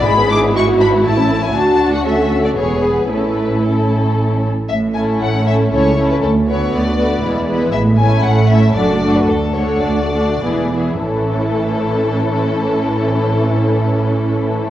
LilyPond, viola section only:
\new Staff \with { instrumentName = "Viola section" } { \time 3/4 \key a \major \tempo 4 = 115 gis'4 fis'4 e'4 | fis'4 a'4 gis'4 | e'2~ e'8 r8 | r8 <a cis'>4 <a cis'>8 <a cis'>8 <a cis'>8 |
r8 <a b>4 <a b>8 <gis b>8 <gis b>8 | r8 <a cis'>4 <a cis'>8 <a d'>8 <a d'>8 | r8 <a d'>4 <a d'>8 <e b>8 <e b>8 | <e cis'>2.~ |
<e cis'>2. | }